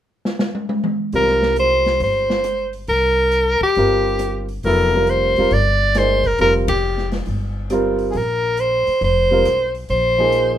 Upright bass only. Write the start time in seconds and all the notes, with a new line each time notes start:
1.13 C2
2.00 G1
2.88 C2
3.61 muted upright bass stroke
3.77 G1
4.64 F1
5.51 G1
6.39 F1
7.27 G1
8.15 A#1
8.87 muted upright bass stroke
9.01 F1
9.46 B1
9.90 A#1